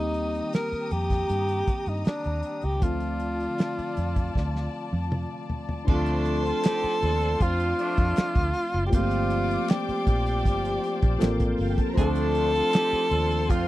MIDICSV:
0, 0, Header, 1, 9, 480
1, 0, Start_track
1, 0, Tempo, 762389
1, 1779, Time_signature, 4, 2, 24, 8
1, 8612, End_track
2, 0, Start_track
2, 0, Title_t, "Tonewheel organ"
2, 0, Program_c, 0, 16
2, 3697, Note_on_c, 0, 81, 56
2, 3698, Note_on_c, 0, 65, 57
2, 3698, Note_on_c, 0, 74, 57
2, 3700, Note_on_c, 0, 84, 68
2, 5600, Note_off_c, 0, 81, 0
2, 5601, Note_off_c, 0, 74, 0
2, 5602, Note_off_c, 0, 84, 0
2, 5620, Note_on_c, 0, 81, 65
2, 5621, Note_on_c, 0, 72, 64
2, 5621, Note_on_c, 0, 79, 74
2, 7511, Note_off_c, 0, 65, 0
2, 7519, Note_off_c, 0, 72, 0
2, 7519, Note_off_c, 0, 79, 0
2, 7530, Note_on_c, 0, 74, 63
2, 7530, Note_on_c, 0, 84, 73
2, 7533, Note_on_c, 0, 65, 65
2, 8612, Note_off_c, 0, 65, 0
2, 8612, Note_off_c, 0, 74, 0
2, 8612, Note_off_c, 0, 81, 0
2, 8612, Note_off_c, 0, 84, 0
2, 8612, End_track
3, 0, Start_track
3, 0, Title_t, "String section"
3, 0, Program_c, 1, 48
3, 0, Note_on_c, 1, 67, 64
3, 0, Note_on_c, 1, 82, 79
3, 0, Note_on_c, 1, 87, 69
3, 1753, Note_off_c, 1, 82, 0
3, 1754, Note_off_c, 1, 67, 0
3, 1754, Note_off_c, 1, 87, 0
3, 1776, Note_on_c, 1, 74, 72
3, 1777, Note_on_c, 1, 81, 81
3, 1779, Note_on_c, 1, 65, 61
3, 3677, Note_off_c, 1, 74, 0
3, 3677, Note_off_c, 1, 81, 0
3, 3678, Note_off_c, 1, 65, 0
3, 3702, Note_on_c, 1, 84, 97
3, 3705, Note_on_c, 1, 72, 77
3, 5357, Note_off_c, 1, 84, 0
3, 5359, Note_off_c, 1, 72, 0
3, 5620, Note_on_c, 1, 86, 97
3, 5622, Note_on_c, 1, 74, 92
3, 7225, Note_off_c, 1, 86, 0
3, 7226, Note_off_c, 1, 74, 0
3, 7300, Note_on_c, 1, 65, 58
3, 7301, Note_on_c, 1, 77, 67
3, 7360, Note_off_c, 1, 65, 0
3, 7360, Note_off_c, 1, 77, 0
3, 7363, Note_on_c, 1, 67, 65
3, 7363, Note_on_c, 1, 79, 70
3, 7421, Note_off_c, 1, 67, 0
3, 7421, Note_off_c, 1, 79, 0
3, 7423, Note_on_c, 1, 81, 79
3, 7425, Note_on_c, 1, 69, 65
3, 7481, Note_off_c, 1, 81, 0
3, 7482, Note_off_c, 1, 69, 0
3, 7484, Note_on_c, 1, 70, 89
3, 7485, Note_on_c, 1, 82, 91
3, 7542, Note_off_c, 1, 70, 0
3, 7542, Note_off_c, 1, 82, 0
3, 7543, Note_on_c, 1, 72, 84
3, 7543, Note_on_c, 1, 84, 102
3, 8612, Note_off_c, 1, 72, 0
3, 8612, Note_off_c, 1, 84, 0
3, 8612, End_track
4, 0, Start_track
4, 0, Title_t, "Tenor saxophone"
4, 0, Program_c, 2, 66
4, 0, Note_on_c, 2, 63, 90
4, 317, Note_off_c, 2, 63, 0
4, 345, Note_on_c, 2, 70, 84
4, 584, Note_on_c, 2, 67, 92
4, 593, Note_off_c, 2, 70, 0
4, 1189, Note_on_c, 2, 63, 71
4, 1199, Note_off_c, 2, 67, 0
4, 1302, Note_off_c, 2, 63, 0
4, 1306, Note_on_c, 2, 62, 70
4, 1666, Note_on_c, 2, 67, 72
4, 1676, Note_off_c, 2, 62, 0
4, 1782, Note_on_c, 2, 65, 82
4, 1792, Note_off_c, 2, 67, 0
4, 3224, Note_off_c, 2, 65, 0
4, 3711, Note_on_c, 2, 69, 106
4, 4675, Note_on_c, 2, 65, 95
4, 4684, Note_off_c, 2, 69, 0
4, 5578, Note_off_c, 2, 65, 0
4, 5582, Note_on_c, 2, 67, 64
4, 5633, Note_on_c, 2, 65, 93
4, 5642, Note_off_c, 2, 67, 0
4, 6106, Note_on_c, 2, 67, 83
4, 6116, Note_off_c, 2, 65, 0
4, 7302, Note_off_c, 2, 67, 0
4, 7545, Note_on_c, 2, 69, 127
4, 8502, Note_on_c, 2, 65, 96
4, 8512, Note_off_c, 2, 69, 0
4, 8612, Note_off_c, 2, 65, 0
4, 8612, End_track
5, 0, Start_track
5, 0, Title_t, "Horn section"
5, 0, Program_c, 3, 61
5, 3702, Note_on_c, 3, 53, 84
5, 3703, Note_on_c, 3, 57, 91
5, 3703, Note_on_c, 3, 62, 95
5, 4041, Note_off_c, 3, 53, 0
5, 4042, Note_off_c, 3, 57, 0
5, 4042, Note_off_c, 3, 62, 0
5, 4064, Note_on_c, 3, 60, 65
5, 4065, Note_on_c, 3, 62, 64
5, 4065, Note_on_c, 3, 65, 66
5, 4160, Note_off_c, 3, 60, 0
5, 4160, Note_off_c, 3, 62, 0
5, 4160, Note_off_c, 3, 65, 0
5, 4181, Note_on_c, 3, 60, 70
5, 4181, Note_on_c, 3, 67, 76
5, 4182, Note_on_c, 3, 63, 70
5, 4374, Note_off_c, 3, 60, 0
5, 4374, Note_off_c, 3, 67, 0
5, 4375, Note_off_c, 3, 63, 0
5, 4420, Note_on_c, 3, 69, 85
5, 4421, Note_on_c, 3, 65, 92
5, 4422, Note_on_c, 3, 62, 80
5, 4614, Note_off_c, 3, 62, 0
5, 4614, Note_off_c, 3, 65, 0
5, 4614, Note_off_c, 3, 69, 0
5, 4660, Note_on_c, 3, 62, 77
5, 4661, Note_on_c, 3, 60, 79
5, 4662, Note_on_c, 3, 65, 89
5, 4853, Note_off_c, 3, 62, 0
5, 4854, Note_off_c, 3, 60, 0
5, 4854, Note_off_c, 3, 65, 0
5, 4901, Note_on_c, 3, 53, 83
5, 4902, Note_on_c, 3, 57, 85
5, 4902, Note_on_c, 3, 62, 89
5, 5357, Note_off_c, 3, 53, 0
5, 5357, Note_off_c, 3, 57, 0
5, 5357, Note_off_c, 3, 62, 0
5, 7536, Note_on_c, 3, 62, 101
5, 7537, Note_on_c, 3, 57, 93
5, 7538, Note_on_c, 3, 53, 94
5, 7875, Note_off_c, 3, 62, 0
5, 7876, Note_off_c, 3, 53, 0
5, 7876, Note_off_c, 3, 57, 0
5, 7895, Note_on_c, 3, 62, 69
5, 7895, Note_on_c, 3, 65, 79
5, 7896, Note_on_c, 3, 60, 67
5, 7992, Note_off_c, 3, 62, 0
5, 7992, Note_off_c, 3, 65, 0
5, 7993, Note_off_c, 3, 60, 0
5, 8014, Note_on_c, 3, 60, 73
5, 8015, Note_on_c, 3, 63, 79
5, 8015, Note_on_c, 3, 67, 88
5, 8207, Note_off_c, 3, 60, 0
5, 8208, Note_off_c, 3, 63, 0
5, 8208, Note_off_c, 3, 67, 0
5, 8254, Note_on_c, 3, 62, 77
5, 8255, Note_on_c, 3, 65, 87
5, 8256, Note_on_c, 3, 69, 102
5, 8447, Note_off_c, 3, 62, 0
5, 8448, Note_off_c, 3, 65, 0
5, 8448, Note_off_c, 3, 69, 0
5, 8493, Note_on_c, 3, 60, 77
5, 8493, Note_on_c, 3, 62, 77
5, 8494, Note_on_c, 3, 65, 91
5, 8612, Note_off_c, 3, 60, 0
5, 8612, Note_off_c, 3, 62, 0
5, 8612, Note_off_c, 3, 65, 0
5, 8612, End_track
6, 0, Start_track
6, 0, Title_t, "Tine electric piano"
6, 0, Program_c, 4, 4
6, 0, Control_c, 4, 64, 127
6, 0, Note_on_c, 4, 51, 55
6, 0, Note_on_c, 4, 55, 44
6, 0, Note_on_c, 4, 58, 47
6, 0, Note_on_c, 4, 60, 44
6, 0, Note_on_c, 4, 67, 58
6, 1743, Note_off_c, 4, 51, 0
6, 1749, Note_off_c, 4, 55, 0
6, 1752, Note_on_c, 4, 50, 47
6, 1754, Note_off_c, 4, 58, 0
6, 1760, Note_off_c, 4, 60, 0
6, 1764, Note_on_c, 4, 53, 47
6, 1767, Note_off_c, 4, 67, 0
6, 1775, Note_on_c, 4, 57, 52
6, 1786, Note_on_c, 4, 60, 49
6, 1788, Control_c, 4, 64, 0
6, 1797, Note_on_c, 4, 65, 51
6, 1911, Control_c, 4, 64, 127
6, 3665, Note_off_c, 4, 50, 0
6, 3670, Note_off_c, 4, 53, 0
6, 3676, Note_off_c, 4, 57, 0
6, 3682, Note_off_c, 4, 60, 0
6, 3682, Note_on_c, 4, 62, 56
6, 3687, Note_off_c, 4, 65, 0
6, 3691, Note_on_c, 4, 53, 49
6, 3704, Note_on_c, 4, 57, 52
6, 3712, Control_c, 4, 64, 0
6, 3715, Note_on_c, 4, 60, 53
6, 3726, Note_on_c, 4, 65, 63
6, 3817, Control_c, 4, 64, 127
6, 5587, Note_off_c, 4, 62, 0
6, 5592, Note_off_c, 4, 53, 0
6, 5598, Note_off_c, 4, 57, 0
6, 5600, Note_on_c, 4, 53, 65
6, 5603, Note_off_c, 4, 60, 0
6, 5609, Note_off_c, 4, 65, 0
6, 5611, Note_on_c, 4, 57, 58
6, 5622, Note_on_c, 4, 58, 55
6, 5631, Control_c, 4, 64, 0
6, 5633, Note_on_c, 4, 60, 55
6, 5645, Note_on_c, 4, 67, 67
6, 5738, Control_c, 4, 64, 127
6, 7024, Note_off_c, 4, 53, 0
6, 7029, Note_off_c, 4, 57, 0
6, 7035, Note_off_c, 4, 58, 0
6, 7040, Note_off_c, 4, 60, 0
6, 7043, Note_on_c, 4, 53, 66
6, 7046, Note_off_c, 4, 67, 0
6, 7049, Note_on_c, 4, 69, 55
6, 7054, Note_on_c, 4, 58, 57
6, 7062, Note_on_c, 4, 60, 56
6, 7066, Note_on_c, 4, 70, 63
6, 7509, Note_off_c, 4, 53, 0
6, 7517, Note_on_c, 4, 53, 63
6, 7526, Note_on_c, 4, 57, 55
6, 7531, Note_off_c, 4, 60, 0
6, 7534, Note_off_c, 4, 69, 0
6, 7536, Note_off_c, 4, 58, 0
6, 7538, Note_on_c, 4, 60, 53
6, 7542, Note_off_c, 4, 70, 0
6, 7549, Control_c, 4, 64, 0
6, 7549, Note_on_c, 4, 62, 57
6, 7561, Note_on_c, 4, 69, 63
6, 7663, Control_c, 4, 64, 127
6, 8612, Note_off_c, 4, 53, 0
6, 8612, Note_off_c, 4, 57, 0
6, 8612, Note_off_c, 4, 60, 0
6, 8612, Note_off_c, 4, 62, 0
6, 8612, Note_off_c, 4, 69, 0
6, 8612, End_track
7, 0, Start_track
7, 0, Title_t, "Fingered electric bass"
7, 0, Program_c, 5, 33
7, 0, Note_on_c, 5, 39, 78
7, 250, Note_off_c, 5, 39, 0
7, 577, Note_on_c, 5, 41, 76
7, 774, Note_off_c, 5, 41, 0
7, 817, Note_on_c, 5, 43, 95
7, 1015, Note_off_c, 5, 43, 0
7, 1177, Note_on_c, 5, 43, 67
7, 1276, Note_off_c, 5, 43, 0
7, 1422, Note_on_c, 5, 39, 73
7, 1519, Note_off_c, 5, 39, 0
7, 1660, Note_on_c, 5, 37, 82
7, 1759, Note_off_c, 5, 37, 0
7, 1777, Note_on_c, 5, 38, 82
7, 2175, Note_off_c, 5, 38, 0
7, 2503, Note_on_c, 5, 41, 75
7, 2701, Note_off_c, 5, 41, 0
7, 2742, Note_on_c, 5, 38, 84
7, 2940, Note_off_c, 5, 38, 0
7, 3102, Note_on_c, 5, 41, 59
7, 3300, Note_off_c, 5, 41, 0
7, 3703, Note_on_c, 5, 38, 98
7, 4099, Note_off_c, 5, 38, 0
7, 4425, Note_on_c, 5, 39, 93
7, 4622, Note_off_c, 5, 39, 0
7, 4663, Note_on_c, 5, 41, 97
7, 4861, Note_off_c, 5, 41, 0
7, 5026, Note_on_c, 5, 41, 66
7, 5124, Note_off_c, 5, 41, 0
7, 5262, Note_on_c, 5, 38, 90
7, 5361, Note_off_c, 5, 38, 0
7, 5504, Note_on_c, 5, 30, 86
7, 5602, Note_off_c, 5, 30, 0
7, 5623, Note_on_c, 5, 31, 98
7, 6018, Note_off_c, 5, 31, 0
7, 6341, Note_on_c, 5, 34, 84
7, 6583, Note_off_c, 5, 34, 0
7, 6583, Note_on_c, 5, 31, 97
7, 6780, Note_off_c, 5, 31, 0
7, 6943, Note_on_c, 5, 34, 80
7, 7040, Note_off_c, 5, 34, 0
7, 7059, Note_on_c, 5, 33, 88
7, 7257, Note_off_c, 5, 33, 0
7, 7297, Note_on_c, 5, 31, 82
7, 7397, Note_off_c, 5, 31, 0
7, 7539, Note_on_c, 5, 38, 106
7, 7934, Note_off_c, 5, 38, 0
7, 8256, Note_on_c, 5, 39, 91
7, 8500, Note_off_c, 5, 39, 0
7, 8500, Note_on_c, 5, 41, 92
7, 8612, Note_off_c, 5, 41, 0
7, 8612, End_track
8, 0, Start_track
8, 0, Title_t, "Muted fingered electric bass strokes"
8, 456, Note_on_c, 9, 29, 43
8, 519, Note_off_c, 9, 29, 0
8, 1298, Note_on_c, 9, 29, 37
8, 1361, Note_off_c, 9, 29, 0
8, 2384, Note_on_c, 9, 29, 41
8, 2447, Note_off_c, 9, 29, 0
8, 4306, Note_on_c, 9, 29, 42
8, 4369, Note_off_c, 9, 29, 0
8, 5148, Note_on_c, 9, 29, 45
8, 5211, Note_off_c, 9, 29, 0
8, 6224, Note_on_c, 9, 29, 45
8, 6287, Note_off_c, 9, 29, 0
8, 8140, Note_on_c, 9, 29, 46
8, 8203, Note_off_c, 9, 29, 0
8, 8612, End_track
9, 0, Start_track
9, 0, Title_t, "Drums"
9, 89, Note_on_c, 9, 42, 50
9, 151, Note_off_c, 9, 42, 0
9, 220, Note_on_c, 9, 42, 44
9, 283, Note_off_c, 9, 42, 0
9, 332, Note_on_c, 9, 42, 83
9, 344, Note_on_c, 9, 38, 99
9, 395, Note_off_c, 9, 42, 0
9, 407, Note_off_c, 9, 38, 0
9, 458, Note_on_c, 9, 42, 38
9, 521, Note_off_c, 9, 42, 0
9, 573, Note_on_c, 9, 42, 58
9, 636, Note_off_c, 9, 42, 0
9, 693, Note_on_c, 9, 42, 46
9, 694, Note_on_c, 9, 36, 79
9, 702, Note_on_c, 9, 38, 26
9, 756, Note_off_c, 9, 42, 0
9, 757, Note_off_c, 9, 36, 0
9, 765, Note_off_c, 9, 38, 0
9, 814, Note_on_c, 9, 42, 71
9, 877, Note_off_c, 9, 42, 0
9, 935, Note_on_c, 9, 42, 54
9, 998, Note_off_c, 9, 42, 0
9, 1054, Note_on_c, 9, 42, 54
9, 1055, Note_on_c, 9, 36, 82
9, 1117, Note_off_c, 9, 42, 0
9, 1118, Note_off_c, 9, 36, 0
9, 1170, Note_on_c, 9, 42, 42
9, 1233, Note_off_c, 9, 42, 0
9, 1289, Note_on_c, 9, 42, 68
9, 1303, Note_on_c, 9, 38, 109
9, 1352, Note_off_c, 9, 42, 0
9, 1366, Note_off_c, 9, 38, 0
9, 1411, Note_on_c, 9, 42, 47
9, 1474, Note_off_c, 9, 42, 0
9, 1528, Note_on_c, 9, 42, 66
9, 1591, Note_off_c, 9, 42, 0
9, 1647, Note_on_c, 9, 42, 40
9, 1710, Note_off_c, 9, 42, 0
9, 1774, Note_on_c, 9, 42, 79
9, 1775, Note_on_c, 9, 36, 100
9, 1837, Note_off_c, 9, 42, 0
9, 1838, Note_off_c, 9, 36, 0
9, 1891, Note_on_c, 9, 42, 50
9, 1954, Note_off_c, 9, 42, 0
9, 2012, Note_on_c, 9, 42, 53
9, 2075, Note_off_c, 9, 42, 0
9, 2143, Note_on_c, 9, 42, 42
9, 2206, Note_off_c, 9, 42, 0
9, 2255, Note_on_c, 9, 42, 76
9, 2268, Note_on_c, 9, 38, 98
9, 2318, Note_off_c, 9, 42, 0
9, 2330, Note_off_c, 9, 38, 0
9, 2384, Note_on_c, 9, 42, 39
9, 2447, Note_off_c, 9, 42, 0
9, 2498, Note_on_c, 9, 42, 57
9, 2561, Note_off_c, 9, 42, 0
9, 2620, Note_on_c, 9, 36, 82
9, 2620, Note_on_c, 9, 42, 47
9, 2683, Note_off_c, 9, 36, 0
9, 2683, Note_off_c, 9, 42, 0
9, 2740, Note_on_c, 9, 36, 71
9, 2751, Note_on_c, 9, 38, 46
9, 2803, Note_off_c, 9, 36, 0
9, 2814, Note_off_c, 9, 38, 0
9, 2871, Note_on_c, 9, 38, 47
9, 2934, Note_off_c, 9, 38, 0
9, 3102, Note_on_c, 9, 48, 50
9, 3165, Note_off_c, 9, 48, 0
9, 3222, Note_on_c, 9, 47, 80
9, 3285, Note_off_c, 9, 47, 0
9, 3460, Note_on_c, 9, 43, 68
9, 3523, Note_off_c, 9, 43, 0
9, 3581, Note_on_c, 9, 43, 72
9, 3644, Note_off_c, 9, 43, 0
9, 3700, Note_on_c, 9, 49, 89
9, 3702, Note_on_c, 9, 36, 106
9, 3763, Note_off_c, 9, 49, 0
9, 3765, Note_off_c, 9, 36, 0
9, 3815, Note_on_c, 9, 42, 57
9, 3878, Note_off_c, 9, 42, 0
9, 3937, Note_on_c, 9, 42, 57
9, 4000, Note_off_c, 9, 42, 0
9, 4066, Note_on_c, 9, 42, 46
9, 4129, Note_off_c, 9, 42, 0
9, 4179, Note_on_c, 9, 42, 89
9, 4184, Note_on_c, 9, 39, 67
9, 4191, Note_on_c, 9, 38, 109
9, 4242, Note_off_c, 9, 42, 0
9, 4247, Note_off_c, 9, 39, 0
9, 4254, Note_off_c, 9, 38, 0
9, 4304, Note_on_c, 9, 42, 41
9, 4367, Note_off_c, 9, 42, 0
9, 4422, Note_on_c, 9, 42, 70
9, 4485, Note_off_c, 9, 42, 0
9, 4541, Note_on_c, 9, 42, 52
9, 4604, Note_off_c, 9, 42, 0
9, 4662, Note_on_c, 9, 36, 84
9, 4663, Note_on_c, 9, 42, 82
9, 4725, Note_off_c, 9, 36, 0
9, 4726, Note_off_c, 9, 42, 0
9, 4784, Note_on_c, 9, 42, 56
9, 4847, Note_off_c, 9, 42, 0
9, 4904, Note_on_c, 9, 42, 62
9, 4967, Note_off_c, 9, 42, 0
9, 5019, Note_on_c, 9, 42, 47
9, 5024, Note_on_c, 9, 36, 95
9, 5082, Note_off_c, 9, 42, 0
9, 5087, Note_off_c, 9, 36, 0
9, 5137, Note_on_c, 9, 42, 83
9, 5149, Note_on_c, 9, 39, 74
9, 5151, Note_on_c, 9, 38, 118
9, 5200, Note_off_c, 9, 42, 0
9, 5212, Note_off_c, 9, 39, 0
9, 5214, Note_off_c, 9, 38, 0
9, 5257, Note_on_c, 9, 42, 51
9, 5261, Note_on_c, 9, 36, 94
9, 5320, Note_off_c, 9, 42, 0
9, 5324, Note_off_c, 9, 36, 0
9, 5374, Note_on_c, 9, 46, 65
9, 5437, Note_off_c, 9, 46, 0
9, 5496, Note_on_c, 9, 42, 46
9, 5559, Note_off_c, 9, 42, 0
9, 5619, Note_on_c, 9, 42, 96
9, 5621, Note_on_c, 9, 36, 103
9, 5682, Note_off_c, 9, 42, 0
9, 5684, Note_off_c, 9, 36, 0
9, 5735, Note_on_c, 9, 42, 56
9, 5798, Note_off_c, 9, 42, 0
9, 5857, Note_on_c, 9, 42, 61
9, 5920, Note_off_c, 9, 42, 0
9, 5987, Note_on_c, 9, 42, 49
9, 6050, Note_off_c, 9, 42, 0
9, 6100, Note_on_c, 9, 42, 86
9, 6102, Note_on_c, 9, 39, 69
9, 6112, Note_on_c, 9, 38, 112
9, 6162, Note_off_c, 9, 42, 0
9, 6165, Note_off_c, 9, 39, 0
9, 6175, Note_off_c, 9, 38, 0
9, 6226, Note_on_c, 9, 42, 44
9, 6289, Note_off_c, 9, 42, 0
9, 6339, Note_on_c, 9, 36, 87
9, 6340, Note_on_c, 9, 42, 65
9, 6402, Note_off_c, 9, 36, 0
9, 6403, Note_off_c, 9, 42, 0
9, 6462, Note_on_c, 9, 42, 51
9, 6525, Note_off_c, 9, 42, 0
9, 6582, Note_on_c, 9, 36, 80
9, 6585, Note_on_c, 9, 42, 73
9, 6645, Note_off_c, 9, 36, 0
9, 6648, Note_off_c, 9, 42, 0
9, 6706, Note_on_c, 9, 42, 58
9, 6769, Note_off_c, 9, 42, 0
9, 6822, Note_on_c, 9, 42, 71
9, 6885, Note_off_c, 9, 42, 0
9, 6939, Note_on_c, 9, 42, 45
9, 6942, Note_on_c, 9, 36, 89
9, 7002, Note_off_c, 9, 42, 0
9, 7005, Note_off_c, 9, 36, 0
9, 7054, Note_on_c, 9, 42, 83
9, 7064, Note_on_c, 9, 39, 77
9, 7069, Note_on_c, 9, 38, 117
9, 7117, Note_off_c, 9, 42, 0
9, 7127, Note_off_c, 9, 39, 0
9, 7132, Note_off_c, 9, 38, 0
9, 7175, Note_on_c, 9, 42, 54
9, 7178, Note_on_c, 9, 36, 96
9, 7238, Note_off_c, 9, 42, 0
9, 7241, Note_off_c, 9, 36, 0
9, 7292, Note_on_c, 9, 46, 71
9, 7354, Note_off_c, 9, 46, 0
9, 7415, Note_on_c, 9, 42, 41
9, 7416, Note_on_c, 9, 36, 91
9, 7478, Note_off_c, 9, 42, 0
9, 7479, Note_off_c, 9, 36, 0
9, 7539, Note_on_c, 9, 36, 108
9, 7539, Note_on_c, 9, 42, 89
9, 7602, Note_off_c, 9, 36, 0
9, 7602, Note_off_c, 9, 42, 0
9, 7652, Note_on_c, 9, 42, 59
9, 7715, Note_off_c, 9, 42, 0
9, 7774, Note_on_c, 9, 42, 63
9, 7837, Note_off_c, 9, 42, 0
9, 7903, Note_on_c, 9, 42, 50
9, 7966, Note_off_c, 9, 42, 0
9, 8015, Note_on_c, 9, 42, 92
9, 8022, Note_on_c, 9, 39, 70
9, 8028, Note_on_c, 9, 38, 120
9, 8078, Note_off_c, 9, 42, 0
9, 8085, Note_off_c, 9, 39, 0
9, 8090, Note_off_c, 9, 38, 0
9, 8141, Note_on_c, 9, 42, 42
9, 8204, Note_off_c, 9, 42, 0
9, 8257, Note_on_c, 9, 42, 66
9, 8320, Note_off_c, 9, 42, 0
9, 8378, Note_on_c, 9, 42, 53
9, 8441, Note_off_c, 9, 42, 0
9, 8498, Note_on_c, 9, 36, 83
9, 8500, Note_on_c, 9, 42, 83
9, 8561, Note_off_c, 9, 36, 0
9, 8563, Note_off_c, 9, 42, 0
9, 8612, End_track
0, 0, End_of_file